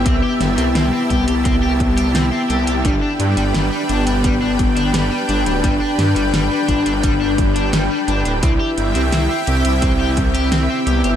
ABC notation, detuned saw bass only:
X:1
M:4/4
L:1/16
Q:1/4=86
K:G
V:1 name="Detuned saw bass" clef=bass
C,, z G,,, C,, C,, z C,, C,, C,, C,, C,, C,, C,, z C,, C,, | G,,, z G,, G,,, G,,, z G,,, G,,, G,,, G,,, G,,, G,,, G,,, z G,,, D,,, | G,,, z G,, G,,, G,,, z G,,, G,,, G,,, G,,, G,,, G,,, G,,, z G,,, D,,, | C,, z G,,, C,, C,, z C,, C,, C,, C,, C,, C,, C,, z C,, G,,, |]